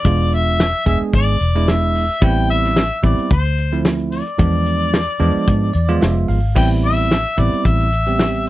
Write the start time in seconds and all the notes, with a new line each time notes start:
Already playing: D5
0.05 E1 G#3 B3 D4 F4, kick, closed hi-hat
0.32 E5, closed hi-hat
0.60 snare, closed hi-hat
0.86 E1 G#3 B3 D4 G#4 E5, kick, closed hi-hat
1.01 muted fingered electric bass stroke
1.13 G#1 D5, kick, closed hi-hat
1.41 E1, closed hi-hat
1.55 G#3 B3 D4 E4, closed hi-hat
1.68 E5, snare, closed hi-hat
1.95 open hi-hat
2.22 A1 G3 B3 C4 E4 G5, kick, closed hi-hat
2.49 E5, closed hi-hat
2.64 snare
2.76 snare, closed hi-hat
3.03 A1 G3 B3 C4 E4 D5, kick, closed hi-hat
3.19 closed hi-hat
3.31 D2 C5, kick, closed hi-hat
3.45 closed hi-hat
3.58 closed hi-hat
3.73 F3 A3 C4 E4
3.85 snare, closed hi-hat
4.00 closed hi-hat
4.12 D5, open hi-hat
4.27 closed hi-hat
4.38 E2 F3 G#3 B3 D4, kick, closed hi-hat
4.66 closed hi-hat
4.93 snare, closed hi-hat
5.20 E2 F3 G#3 B3 D4, closed hi-hat
5.36 muted fingered electric bass stroke
5.47 G#2, kick, closed hi-hat
5.73 E2 D5, closed hi-hat
5.88 F3 G#3 B3 F4, closed hi-hat
6.01 F1 E5, snare, closed hi-hat
6.28 G#1 F5, open hi-hat
6.55 A1 G3 B3 C4 E4 G5, kick, crash
6.84 E5, closed hi-hat
7.11 snare, closed hi-hat
7.37 A1 G3 B3 C4 E4 D5, kick, closed hi-hat
7.53 muted fingered electric bass stroke, closed hi-hat
7.65 A1 E5, kick, closed hi-hat
7.80 closed hi-hat
7.92 closed hi-hat
8.07 G3 B3 C4 G4, closed hi-hat
8.19 snare, closed hi-hat
8.34 closed hi-hat